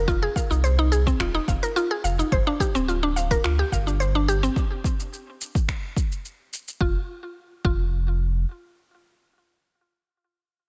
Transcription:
0.00 0.28 F1 loud
0.08 0.21 F4 loud
0.08 kick loud
0.08 shaker soft
0.22 0.35 G#4 loud
0.36 0.49 F5 medium
0.36 kick medium
0.36 shaker medium
0.50 1.12 C2 medium
0.50 0.63 D#4 medium
0.50 shaker soft
0.64 0.78 C5 loud
0.64 shaker soft
0.79 0.91 D#4 loud
0.92 1.05 G#4 loud
0.92 shaker medium
1.07 1.19 C4 loud
1.07 kick loud
1.07 shaker soft
1.20 1.38 D#1 loud
1.20 1.33 F4 medium
1.20 finger snap medium
1.20 kick medium
1.20 shaker soft
1.35 1.42 D#4 loud
1.48 1.57 F1 medium
1.48 1.61 F5 medium
1.48 kick loud
1.48 shaker medium
1.63 1.75 A#4 loud
1.63 shaker soft
1.76 1.89 F4 loud
1.76 shaker soft
1.91 2.03 G#4 loud
2.04 2.22 F1 medium
2.04 2.17 F5 medium
2.04 shaker medium
2.19 2.31 D#4 medium
2.19 shaker soft
2.32 2.41 G1 loud
2.32 2.46 C5 loud
2.32 kick loud
2.32 shaker soft
2.47 2.59 D4 loud
2.60 2.73 G4 loud
2.60 kick medium
2.60 shaker medium
2.75 3.36 D1 medium
2.75 2.87 C4 loud
2.75 shaker soft
2.88 3.01 F4 medium
2.88 shaker soft
3.03 3.10 D4 loud
3.16 3.29 F5 medium
3.16 shaker medium
3.31 3.43 A#4 loud
3.31 kick medium
3.31 shaker soft
3.44 3.62 D2 medium
3.44 3.57 F4 loud
3.44 finger snap medium
3.44 shaker soft
3.59 3.72 G4 loud
3.72 4.48 G1 loud
3.72 3.85 F5 medium
3.72 kick medium
3.72 shaker medium
3.87 4.00 D4 medium
3.87 shaker soft
4.00 4.14 C5 loud
4.00 shaker soft
4.15 4.28 D4 medium
4.28 4.42 G4 loud
4.28 shaker medium
4.43 4.55 C4 loud
4.43 shaker soft
4.56 kick loud
4.56 shaker soft
4.84 kick loud
4.84 shaker medium
5.00 shaker soft
5.13 shaker soft
5.41 shaker medium
5.55 kick loud
5.55 shaker soft
5.68 finger snap medium
5.68 kick medium
5.68 shaker soft
5.97 kick loud
5.97 shaker medium
6.12 shaker soft
6.25 shaker soft
6.53 shaker medium
6.68 shaker soft
6.81 6.97 F1 loud
6.81 6.97 F4 loud
6.81 kick loud
7.65 8.45 F1 loud
7.65 7.81 F4 medium
7.65 kick loud

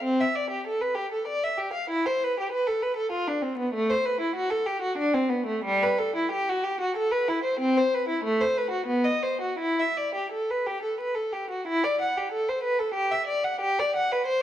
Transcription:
0.03 0.18 C4 medium
0.21 0.35 E5 medium
0.36 0.50 D5 medium
0.50 0.65 G4 medium
0.67 0.81 A4 medium
0.81 0.96 B4 medium
0.95 1.10 G4 medium
1.12 1.27 A4 soft
1.28 1.42 D5 medium
1.44 1.59 E5 medium
1.58 1.74 G4 medium
1.73 1.90 F5 medium
1.90 2.06 E4 medium
2.06 2.22 C5 medium
2.23 2.38 B4 medium
2.40 2.53 G4 soft
2.52 2.67 B4 medium
2.67 2.83 A4 medium
2.82 2.98 B4 medium
2.97 3.12 A4 medium
3.12 3.28 F4 medium
3.28 3.44 D4 medium
3.42 3.58 C4 medium
3.58 3.74 B3 medium
3.74 3.89 A3 medium
3.90 4.05 C5 medium
4.05 4.21 B4 medium
4.21 4.36 E4 medium
4.36 4.51 F#4 medium
4.50 4.66 A4 medium
4.66 4.82 G4 medium
4.82 4.98 F#4 medium
4.98 5.14 D4 medium
5.14 5.31 C4 medium
5.29 5.47 B3 medium
5.46 5.65 A3 medium
5.65 5.82 G3 medium
5.83 5.99 B4 medium
5.99 6.15 A4 medium
6.16 6.32 E4 medium
6.32 6.48 G4 medium
6.49 6.65 F#4 medium
6.64 6.80 G4 medium
6.81 6.96 F#4 medium
6.97 7.12 A4 medium
7.11 7.28 B4 medium
7.28 7.44 E4 medium
7.44 7.59 C5 medium
7.60 7.75 C4 medium
7.77 7.92 C5 medium
7.94 8.08 B4 medium
8.09 8.23 E4 medium
8.24 8.38 A3 medium
8.41 8.55 C5 medium
8.57 8.72 B4 medium
8.71 8.86 F#4 medium
8.87 9.03 B3 medium
9.05 9.22 D#5 medium
9.23 9.40 C5 medium
9.41 9.60 F#4 medium
9.59 9.78 E4 medium
9.79 9.97 E5 medium
9.97 10.15 D5 medium
10.15 10.32 G4 soft
10.32 10.49 A4 medium
10.50 10.67 B4 medium
10.67 10.83 G4 medium
10.82 10.99 A4 soft
11.00 11.17 B4 medium
11.15 11.33 A4 medium
11.33 11.50 G4 medium
11.50 11.67 F#4 medium
11.67 11.83 E4 medium
11.84 12.00 D5 medium
12.01 12.16 F#5 medium
12.18 12.33 G4 medium
12.32 12.48 A4 medium
12.49 12.64 C5 medium
12.63 12.79 B4 medium
12.79 12.95 A4 medium
12.94 13.10 G4 medium
13.11 13.28 E5 medium
13.27 13.44 D5 medium
13.44 13.61 F#5 medium
13.61 13.78 G4 medium
13.79 13.95 D5 medium
13.96 14.11 F#5 medium
14.12 14.27 B4 medium
14.26 14.42 C5 medium

